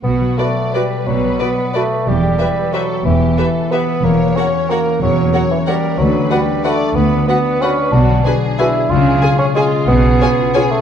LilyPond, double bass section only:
\new Staff \with { instrumentName = "Double bass section" } { \clef bass \time 3/4 \key b \minor \tempo 4 = 182 b,,4 r2 | b,,4 r2 | e,,4 r2 | e,,4 r2 |
e,,4 r2 | e,,4 r2 | d,4 r2 | d,4 r2 |
\key cis \phrygian b,,4 r2 | cis,4 r2 | b,,4 r2 | }